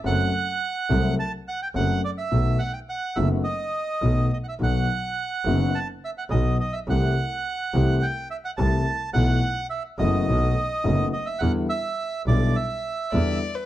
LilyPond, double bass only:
\new Staff \with { instrumentName = "Double bass" } { \clef bass \time 4/4 \key b \phrygian \tempo 4 = 106 fis,,8 r4 c,8 r4 fis,,8 r8 | b,,8 r4 fis,,8 r4 b,,8 r8 | b,,8 r4 fis,,8 r4 b,,8 r8 | c,8 r4 c,8 r4 c,8 r8 |
b,,8 r4 fis,,8 b,,8 r8 fis,,8 r8 | e,8 r4 b,,8 r4 e,8 r8 | }